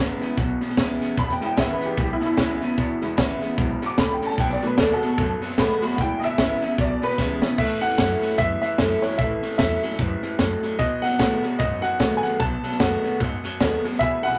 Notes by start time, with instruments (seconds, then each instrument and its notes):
Already playing: upright bass G#1, steel-string acoustic guitar E2 E3
0.00 clean electric guitar E2 C#3, steel-string acoustic guitar G#3 B3 E4
0.21 clean electric guitar E2 C#3, honky-tonk piano G#3 B3 E4, steel-string acoustic guitar B3 E4, muted upright bass stroke, snare
0.37 upright bass B1, clean electric guitar E2 B2, steel-string acoustic guitar B2, kick, snare
0.61 clean electric guitar E2 B2, muted upright bass stroke, snare
0.69 snare
0.77 upright bass C#2, clean electric guitar E2 C#3, steel-string acoustic guitar E3 G#3 B3 E4, kick, snare, hi-hat pedal
1.01 clean electric guitar E2 C#3, muted upright bass stroke, snare
1.17 upright bass E1, steel-string acoustic guitar E2, clean electric guitar E2 B2, honky-tonk piano B5, kick, snare
1.29 honky-tonk piano G5, snare
1.41 clean electric guitar E2 B2, honky-tonk piano G#3 B3 E4, muted upright bass stroke, snare
1.46 honky-tonk piano G5
1.57 upright bass G#1, clean electric guitar E2 C#3, steel-string acoustic guitar E3 G#3 B3 E4, honky-tonk piano E5, kick, snare, hi-hat pedal
1.73 honky-tonk piano B4
1.81 clean electric guitar E2 C#3, snare
1.86 honky-tonk piano G4
1.97 upright bass B1, clean electric guitar E2 B2, steel-string acoustic guitar B2, honky-tonk piano G#3 B3 E4 G4, kick, snare
2.13 honky-tonk piano E4
2.21 clean electric guitar E2 B2, honky-tonk piano D#4, muted upright bass stroke, snare
2.26 honky-tonk piano E4
2.37 upright bass C#2, clean electric guitar E2 C#3, steel-string acoustic guitar E3 G#3 B3 E4, kick, snare, hi-hat pedal
2.61 clean electric guitar E2 C#3, steel-string acoustic guitar B3 E4, muted upright bass stroke, snare
2.78 upright bass E1, steel-string acoustic guitar E2, clean electric guitar E2 B2, kick, snare
3.01 upright bass E1, clean electric guitar E2 B2, honky-tonk piano G#3 B3 E4, snare
3.17 upright bass G#1, clean electric guitar C#3, steel-string acoustic guitar E3 G#3 B3 E4, kick, snare, hi-hat pedal
3.41 clean electric guitar E2 C#3, steel-string acoustic guitar B3 E4, muted upright bass stroke, snare
3.58 upright bass B1, clean electric guitar E2 B2, steel-string acoustic guitar G#2, honky-tonk piano G#3 B3 E4, kick, snare
3.82 clean electric guitar E2 B2, muted upright bass stroke, snare
3.86 honky-tonk piano D6
3.98 upright bass C#2, clean electric guitar E2 C#3, steel-string acoustic guitar A2, honky-tonk piano B5, kick, snare, hi-hat pedal
4.13 honky-tonk piano G5
4.22 clean electric guitar E2 C#3, muted upright bass stroke, snare
4.26 honky-tonk piano A5, snare
4.38 upright bass B1, steel-string acoustic guitar B2, clean electric guitar B2 F#3, honky-tonk piano G5, kick, snare
4.50 honky-tonk piano D5, snare
4.61 clean electric guitar B2 F#3, honky-tonk piano A3 C#4 D#4, muted upright bass stroke, snare
4.66 honky-tonk piano B4
4.78 upright bass D#2, clean electric guitar B2 G#3, steel-string acoustic guitar D#3 A3 B3 F#4, honky-tonk piano D5, kick, snare, hi-hat pedal
4.93 honky-tonk piano F#4 A4
5.01 clean electric guitar B2 G#3, steel-string acoustic guitar B3 F#4, muted upright bass stroke, snare
5.18 upright bass F#2, steel-string acoustic guitar F#2, clean electric guitar B2 F#3, kick, snare
5.42 clean electric guitar B2 F#3, muted upright bass stroke, snare
5.50 snare
5.58 upright bass A2, clean electric guitar B2 G#3, steel-string acoustic guitar D#3 A3 B3 F#4, honky-tonk piano B5, kick, snare, hi-hat pedal
5.82 clean electric guitar B2 G#3, steel-string acoustic guitar B3 F#4, honky-tonk piano B5, muted upright bass stroke, snare
5.90 snare
5.96 upright bass E1, clean electric guitar E2 B2, steel-string acoustic guitar E2, honky-tonk piano G#3 B3 E4 F#5, kick, snare
6.01 honky-tonk piano G5
6.20 upright bass E1, clean electric guitar E2 B2, honky-tonk piano D#5, snare
6.24 honky-tonk piano E5
6.38 upright bass G#1, clean electric guitar E2 C#3, steel-string acoustic guitar E3 G#3 B3 E4, kick, snare, hi-hat pedal
6.62 clean electric guitar E2 C#3, steel-string acoustic guitar B3 E4, muted upright bass stroke, snare
6.78 upright bass B1, clean electric guitar E2 B2, steel-string acoustic guitar B2, honky-tonk piano D5, kick, snare
7.02 clean electric guitar E2 B2, honky-tonk piano B4, muted upright bass stroke, snare
7.10 snare
7.18 upright bass C#2, clean electric guitar E2 C#3, steel-string acoustic guitar E3 G#3 B3 E4, kick, snare, hi-hat pedal
7.42 clean electric guitar E2 C#3, steel-string acoustic guitar B3 E4, muted upright bass stroke, snare
7.58 steel-string acoustic guitar A2, clean electric guitar A2 E3, upright piano E5, kick, snare, crash
7.81 upright bass E2, clean electric guitar A2 E3, upright piano F#5, snare
7.90 snare
7.97 upright bass F#2, clean electric guitar A2 F#3, steel-string acoustic guitar E3 A3 C#4 E4, upright piano F#5, kick, snare, hi-hat pedal
8.22 clean electric guitar A2 F#3, muted upright bass stroke, snare
8.30 snare
8.38 steel-string acoustic guitar E2, upright bass F#2, clean electric guitar A2 E3, upright piano E5, kick, snare
8.61 clean electric guitar A2 E3, upright piano E5, snare
8.78 upright bass F#2, clean electric guitar A2 F#3, steel-string acoustic guitar E3 A3 C#4 E4, kick, snare, hi-hat pedal
9.02 clean electric guitar A2 F#3, steel-string acoustic guitar C#4 E4, upright piano C#5, muted upright bass stroke, snare
9.11 snare
9.18 upright bass A1, clean electric guitar A2 E3, steel-string acoustic guitar A2, upright piano E5, kick, snare
9.43 clean electric guitar A2 E3, snare
9.51 snare
9.58 upright bass E2, clean electric guitar A2 F#3, steel-string acoustic guitar E3 A3 C#4 E4, upright piano E5, kick, snare, hi-hat pedal
9.83 clean electric guitar A2 F#3, steel-string acoustic guitar C#4 E4, snare
9.91 snare
9.99 upright bass F#2, steel-string acoustic guitar G#2, clean electric guitar A2 E3, kick, snare
10.23 clean electric guitar A2 E3, muted upright bass stroke, snare
10.39 upright bass F#2, steel-string acoustic guitar A2, clean electric guitar A2 F#3, kick, snare, hi-hat pedal
10.63 clean electric guitar A2 F#3, muted upright bass stroke, snare
10.79 upright bass B1, clean electric guitar B2 F#3, steel-string acoustic guitar B2, upright piano D#5, kick, snare
11.02 clean electric guitar B2 F#3, upright piano F#5, snare
11.11 snare
11.19 upright bass A2, clean electric guitar B2 G#3, steel-string acoustic guitar D#3 A3 B3 F#4, upright piano F#5, kick, snare, hi-hat pedal
11.43 clean electric guitar B2 G#3, steel-string acoustic guitar B3 F#4, muted upright bass stroke, snare
11.59 steel-string acoustic guitar F#2, upright bass G#2, clean electric guitar B2 F#3, upright piano D#5, kick, snare
11.82 clean electric guitar B2 F#3, upright piano F#5, muted upright bass stroke, snare
11.99 upright bass A2, clean electric guitar B2 G#3, steel-string acoustic guitar D#3 A3 B3 F#4, kick, snare, hi-hat pedal
12.17 upright piano G#5
12.23 clean electric guitar B2 G#3, upright piano F#5, muted upright bass stroke, snare
12.40 upright bass B1, clean electric guitar B2 F#3, steel-string acoustic guitar B2, upright piano A5, kick, snare
12.64 clean electric guitar B2 F#3, muted upright bass stroke, snare
12.72 snare
12.79 upright bass F#2, clean electric guitar B2 G#3, steel-string acoustic guitar D#3 A3 B3 F#4, upright piano F#5, kick, snare, hi-hat pedal
13.04 clean electric guitar B2 G#3, muted upright bass stroke, snare
13.20 steel-string acoustic guitar F#2, upright bass G#2, clean electric guitar B2 F#3, kick, snare
13.44 clean electric guitar B2 F#3, muted upright bass stroke, snare
13.60 upright bass D#2, clean electric guitar B2 G#3, steel-string acoustic guitar D#3 A3 B3 F#4, kick, snare, hi-hat pedal
13.84 clean electric guitar B2 G#3, steel-string acoustic guitar B3 F#4, muted upright bass stroke, snare
13.92 snare
13.99 upright bass E1, clean electric guitar E2 B2, steel-string acoustic guitar E2, upright piano E5, honky-tonk piano E5 G#5 B5, kick, snare
14.23 upright bass B1, clean electric guitar E2 B2, honky-tonk piano E5 G#5 B5, upright piano F#5, snare
14.33 snare